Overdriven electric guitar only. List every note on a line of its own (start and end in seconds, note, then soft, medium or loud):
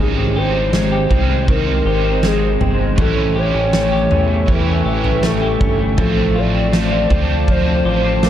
0.00 1.10 G#2 medium
0.00 1.11 D#3 medium
0.00 1.10 C4 medium
0.00 1.08 D#4 medium
1.09 1.49 C4 soft
1.09 1.47 D#4 soft
1.14 1.50 G3 soft
1.48 2.97 D#3 medium
1.48 3.00 C4 medium
1.53 3.00 D#4 medium
2.96 4.45 A2 medium
2.96 4.47 E3 medium
3.00 4.49 G3 medium
3.00 4.50 C#4 medium
3.00 4.50 E4 medium
4.46 5.96 A2 medium
4.46 5.97 E3 medium
4.50 5.98 G3 medium
4.50 5.99 C#4 medium
4.50 6.00 E4 medium
5.97 6.73 A2 medium
5.97 6.71 D3 medium
5.97 6.72 A3 medium
5.97 6.74 C4 medium
5.97 6.76 F4 medium
6.71 7.10 D3 soft
6.71 7.11 A3 medium
6.71 7.11 C4 soft
6.76 7.09 F4 soft
7.10 7.49 C4 soft
7.10 7.48 F4 soft
7.14 7.48 A3 soft
7.48 8.30 D3 medium
7.48 8.30 A3 medium
7.48 8.30 C4 medium
7.53 8.30 F4 medium